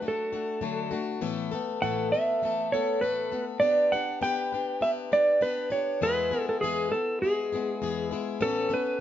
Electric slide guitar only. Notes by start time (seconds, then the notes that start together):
0.08 A4
1.82 F#5
2.12 E5
2.72 C#5
3.01 B4
3.60 D5
3.92 F#5
4.23 G5
4.82 E5
5.13 D5
5.42 B4
5.72 C#5
6.03 B4
6.49 A4
6.61 G#4
6.92 A4
7.22 G#4
8.42 A4
8.74 B4